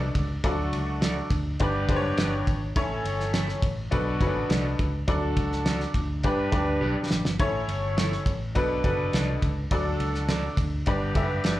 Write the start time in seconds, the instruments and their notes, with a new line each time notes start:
Already playing: upright piano B2 D4 F#4 A4 D5, horn section A3 B3 D4
0.15 fingered electric bass C#2, kick, ride
0.43 fingered electric bass D2, upright piano F#3 D4 F4 A4 D5, horn section A3 D4 F#4, kick, ride
0.50 upright piano F#4
0.73 fingered electric bass C#2, ride
1.01 clean electric guitar F#4 A4 D5, snare, ride
1.30 fingered electric bass D2, kick, ride
1.59 fingered electric bass G1, upright piano G2 D4 G4 B4 D5, horn section B3 D4 G4, kick, ride
1.88 fingered electric bass F#1, upright piano D4 G4 B4 C5, kick, ride
1.96 upright piano C#5
2.17 fingered electric bass G1, clean electric guitar G4 B4 D5, snare, ride
2.47 fingered electric bass G#1, kick, ride
2.75 fingered electric bass A1, upright piano A2 C#4 E4 A4 C#5, horn section C#4 E4 A4, kick, ride
3.04 fingered electric bass G1, ride
3.20 snare
3.33 clean electric guitar E4 A4 C#5, snare, ride
3.49 snare
3.62 fingered electric bass A1, kick, ride
3.91 fingered electric bass B1, upright piano B2 D4 F#4 A4 B4, horn section B3 D4 F#4, kick, ride
4.20 fingered electric bass F#1, upright piano C#4 F#4 A4 B4, kick, ride
4.27 upright piano D4
4.35 fingered electric bass A1
4.49 fingered electric bass C2, clean electric guitar F#4 A4 D5, snare, ride
4.79 fingered electric bass C#2, kick, ride
5.07 fingered electric bass D2, upright piano F#3 D4 F#4 A4 D5, horn section D4 F#4 A4, kick, ride
5.37 fingered electric bass C#2, kick, ride
5.52 snare
5.65 clean electric guitar F#4 A4 D5, snare, ride
5.80 snare
5.94 fingered electric bass D2, kick, ride
6.23 fingered electric bass G2, upright piano G2 D4 G4 B4 D5, horn section D4 G4 B4, kick, ride
6.52 fingered electric bass D2, upright piano D4 G4 B4 D5, kick, ride
6.81 fingered electric bass B1, clean electric guitar G4 B4 D5
7.10 fingered electric bass A1, snare
7.25 fingered electric bass G1, snare
7.39 fingered electric bass A1, upright piano A2 C#4 E4 A4 C#5, horn section E4 A4 C#5, kick, ride
7.68 fingered electric bass G1, ride
7.97 clean electric guitar E4 A4 C#5, snare, ride
8.12 snare
8.26 fingered electric bass A1, kick, ride
8.55 fingered electric bass B1, upright piano B2 D4 F#4 A4 B4, horn section D4 F#4 B4, kick, ride
8.84 fingered electric bass F#1, upright piano D4 F#4 A4 B4, kick, ride
9.13 fingered electric bass C2, clean electric guitar F#4 A4 D5, snare, ride
9.42 fingered electric bass C#2, kick, ride
9.71 fingered electric bass D2, upright piano F#3 D4 F#4 A4 D5, horn section D4 F#4 A4, kick, ride
10.00 fingered electric bass C#2, ride
10.14 snare
10.28 clean electric guitar F#4 A4 D5, snare, ride
10.57 fingered electric bass D2, kick, ride
10.86 fingered electric bass G1, upright piano G2 D4 G4 B4 D5, horn section B3 D4 G4, kick, ride
11.15 fingered electric bass F#1, upright piano D4 G4 A4 E5, kick, ride
11.22 upright piano B4
11.44 fingered electric bass G1, clean electric guitar G4 B4 D5, snare, ride